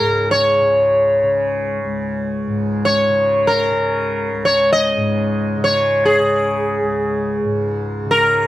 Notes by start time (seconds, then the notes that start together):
Already playing: C#2 C#3 A#4
0.00 G#2
0.31 C#5
0.61 C#3
1.23 C#3
1.84 C#2
2.48 G#2
2.85 C#5
3.09 C#3
3.47 A#4
3.72 C#3
4.34 C#2
4.45 C#5
4.73 D#5
4.97 G#2
5.57 C#3
5.64 C#5
6.05 G#4
6.19 C#3
6.82 C#2
7.44 G#2
8.06 C#3
8.11 A#4